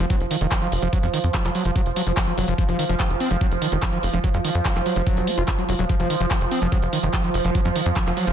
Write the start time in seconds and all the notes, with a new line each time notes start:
Already playing: F3
0.10 F#3, kick, closed hi-hat
0.20 F1, closed hi-hat
0.31 D#3, open hi-hat
0.41 F1 D#3, closed hi-hat
0.51 F3, kick, clap, closed hi-hat
0.62 F3, closed hi-hat
0.72 F1, open hi-hat
0.82 F1 F3, closed hi-hat
0.93 F#3, kick, closed hi-hat
1.03 F2 F3, closed hi-hat
1.14 D#3, open hi-hat
1.24 F2, closed hi-hat
1.34 F3, kick, clap, closed hi-hat
1.45 F1 F3, clap, closed hi-hat
1.55 F#3, open hi-hat
1.65 F1 F3, closed hi-hat
1.76 F#3, kick, closed hi-hat
1.86 F1, closed hi-hat
1.96 F#3, open hi-hat
2.07 F1 F3, closed hi-hat
2.17 F3, kick, clap, closed hi-hat
2.27 F3, closed hi-hat
2.38 F1 F#3, open hi-hat
2.48 F1 F3, closed hi-hat
2.58 F3, kick, closed hi-hat
2.69 F1 F3, closed hi-hat
2.79 D#3, open hi-hat
2.89 F1 F3, closed hi-hat
3.00 F3, kick, clap, closed hi-hat
3.10 F1, closed hi-hat
3.20 C4, open hi-hat
3.31 F1 F3, closed hi-hat
3.41 F#3, kick, closed hi-hat
3.51 F1, closed hi-hat
3.62 D#3, open hi-hat
3.72 F1 D#3, closed hi-hat
3.82 F3, kick, clap, closed hi-hat
3.93 F3, closed hi-hat
4.03 F1, open hi-hat
4.13 F1 F3, closed hi-hat
4.24 F#3, kick, closed hi-hat
4.34 F2 F3, closed hi-hat
4.45 D#3, open hi-hat
4.55 F2, closed hi-hat
4.65 F3, kick, clap, closed hi-hat
4.76 F1 F3, clap, closed hi-hat
4.86 F#3, open hi-hat
4.96 F1 F3, closed hi-hat
5.07 F#3, kick, closed hi-hat
5.17 F1, closed hi-hat
5.27 C4, open hi-hat
5.38 F1 F4, closed hi-hat
5.48 F4, kick, clap, closed hi-hat
5.58 F#3, closed hi-hat
5.69 F1 F#3, open hi-hat
5.79 D#1 F#3, closed hi-hat
5.89 F3, kick, closed hi-hat
6.00 F1 F3, closed hi-hat
6.10 D#3, open hi-hat
6.20 F1 F3, closed hi-hat
6.31 F3, kick, clap, closed hi-hat
6.41 F1, closed hi-hat
6.51 C4, open hi-hat
6.62 F1 F3, closed hi-hat
6.72 F#3, kick, closed hi-hat
6.82 F1, closed hi-hat
6.93 D#3, open hi-hat
7.03 F1 D#3, closed hi-hat
7.13 F3, kick, clap, closed hi-hat
7.24 F3, closed hi-hat
7.34 F1, open hi-hat
7.45 F1 F3, closed hi-hat
7.55 F#3, kick, closed hi-hat
7.65 F2 F3, closed hi-hat
7.76 D#3, open hi-hat
7.86 F2, closed hi-hat
7.96 F3, kick, clap, closed hi-hat
8.07 F1 F3, clap, closed hi-hat
8.17 F#3, open hi-hat
8.27 F1 F3, closed hi-hat